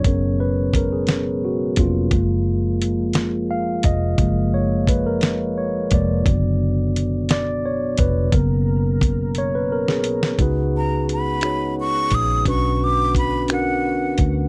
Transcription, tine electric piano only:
X:1
M:6/8
L:1/16
Q:3/8=58
K:F#
V:1 name="Tine electric piano"
c2 B2 A G3 F2 E2- | E2 z6 e2 d2- | d2 c2 B A3 c2 =d2- | =d2 z4 d2 c2 B2 |
A2 z4 c B A G3 | [DFGB]4 z2 [DFGc]4 z2 | [C=DFB]4 z2 [CDFA]4 z2 |]
V:2 name="Tine electric piano"
[F,B,CA]8- [F,B,CA]2 [F,A,B,C]2 | [E,G,A,]2 z8 z2 | [E,G,A,]2 z8 [E,G,A,]2 | [=D,F,B,]2 z8 z2 |
[C,F,A,B,]2 z8 z2 | z12 | z12 |]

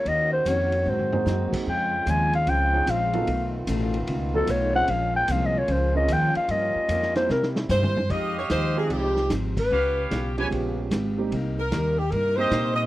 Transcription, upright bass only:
X:1
M:4/4
L:1/8
Q:"Swing" 1/4=149
K:Fm
V:1 name="Upright bass" clef=bass
E,,2 F,,2 A,,2 _G,, z | F,,2 E,,2 D,,2 B,,,2 | =B,,,2 =A,,,2 D,,2 B,,,2 | B,,,2 C,,2 D,,2 E,, z |
G,, z F,,2 C,2 G,,2 | F,,2 E,,2 C,,2 A,,,2 | D,,2 _C,,2 B,,,2 A,,,2 | C,,2 E,,2 G,,2 B,,2 |]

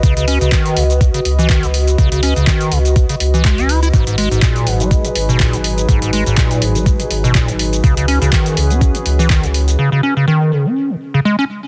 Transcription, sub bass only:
X:1
M:4/4
L:1/16
Q:"Swing 16ths" 1/4=123
K:C#dor
V:1 name="Sub bass" clef=bass
C,,3 C,, z2 C,,3 z C,,3 C,,3 | C,,3 C,, z2 C,,3 z C,,3 C,,3 | G,,,3 G,,, z2 G,,,3 z G,,,3 G,,,3 | G,,,3 G,,, z2 G,,,3 z G,,,3 G,,,3 |
C,,3 C,, z2 C,,3 z C,,3 C,,3 | z16 |]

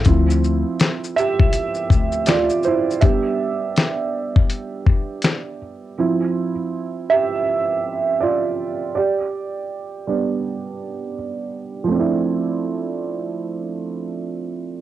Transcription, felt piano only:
X:1
M:4/4
L:1/8
Q:"Swing 16ths" 1/4=81
K:Ddor
V:1 name="Felt piano"
z3 [Ge]3 [Fd] [Ec] | [Ge]6- [Ge] z | z3 [Ge]3 [Fd]2 | [Gd]6 z2 |
[F,A,CDE]8 |]
V:2 name="Felt piano"
[F,CE]3 z4 z | [G,B,D]8 | [F,CE] z6 z | z3 [G,B,D]3 z2 |
z8 |]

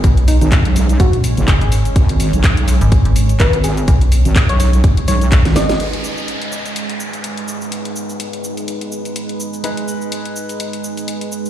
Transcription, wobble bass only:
X:1
M:4/4
L:1/16
Q:"Swing 16ths" 1/4=125
K:G#m
V:1 name="Wobble bass" clef=bass
z3 G,,,2 B,,,3 z3 F,,,2 z3 | G,,,3 B,,,4 z4 z G,,,4 | z3 G,,,2 B,,,3 z2 B,,,3 G,,,3 | z16 |
z16 | z16 |]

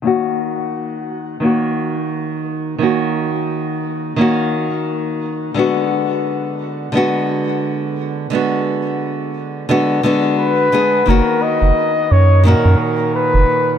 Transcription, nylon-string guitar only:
X:1
M:4/4
L:1/8
Q:"Swing 16ths" 1/4=87
K:F#
V:1 name="Nylon-string guitar"
[D,A,CF]4 [D,A,CF]4 | [D,A,CF]4 [D,A,CF]4 | [=D,G,B,F]4 [D,G,B,F]4 | [=D,G,B,F]4 [D,G,B,F] [D,G,B,F]2 [D,G,B,G] |
[D,A,CF]4 [A,,D,CF]4 |]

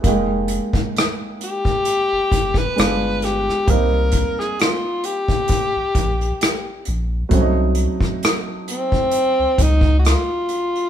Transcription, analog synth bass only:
X:1
M:4/4
L:1/16
Q:"Swing 16ths" 1/4=66
K:Fm
V:1 name="Analog synth bass" clef=bass
F,,,3 z6 G,,, G,,,2 G,,,4 | C,,3 z6 B,,, B,,,2 z2 B,,,2 | C,,3 z6 D,, D,,3 z3 |]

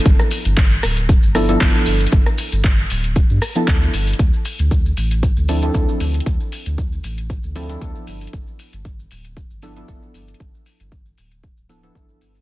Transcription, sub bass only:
X:1
M:4/4
L:1/16
Q:"Swing 16ths" 1/4=116
K:Gmix
V:1 name="Sub bass" clef=bass
G,,, z2 G,,,3 D,,,3 G,,,3 G,,, z G,,,2 | G,,, z2 G,,,3 D,,,3 G,, z2 D,,2 G,,,2 | D,, z2 D,,3 A,,,3 D,,3 D,, z D,,2 | D,, z2 D,,3 A,,,3 D,,3 D,, z G,,,2 |
G,,, z2 G,,,3 D,,,3 G,,,3 G,,, z G,,,2 | G,,, z2 G,,,3 D,,,3 D,,,3 G,,,2 G,,,2 |]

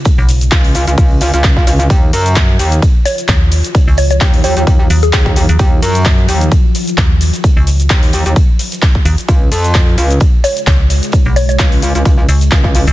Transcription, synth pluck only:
X:1
M:4/4
L:1/16
Q:"Swing 16ths" 1/4=130
K:Ebm
V:1 name="Synth pluck"
z16 | z8 z2 d z4 z | z2 d d z2 d z4 A4- A- | A z12 z3 |
z16 | z8 z2 d z4 z | z2 d d z12 |]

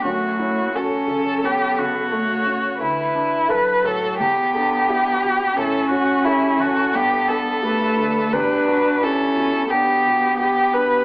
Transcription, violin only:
X:1
M:4/4
L:1/8
Q:1/4=88
K:Edor
V:1 name="Violin"
F2 A2 G F3 | E2 B A G4 | A F E F G A3 | B B A2 G2 G B |]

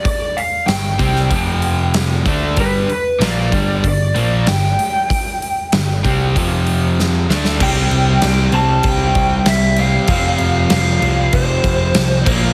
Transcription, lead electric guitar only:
X:1
M:4/4
L:1/8
Q:1/4=96
K:Flyd
V:1 name="Lead electric guitar"
d f g4 z2 | B B d2 d2 g2- | g6 z2 | g3 a g2 e f- |
f2 f2 c3 z |]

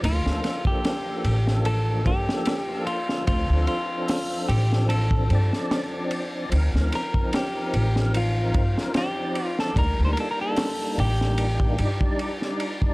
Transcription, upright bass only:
X:1
M:4/4
L:1/16
Q:"Swing 16ths" 1/4=74
K:Dphr
V:1 name="Upright bass" clef=bass
D,, D,, z4 A,,,4 G,, z4 z | D,, D,, z4 A,,,4 G,, z4 z | D,, D,, z4 A,,,4 G,, z4 z | D,, D,, z4 A,,,4 G,, z4 z |]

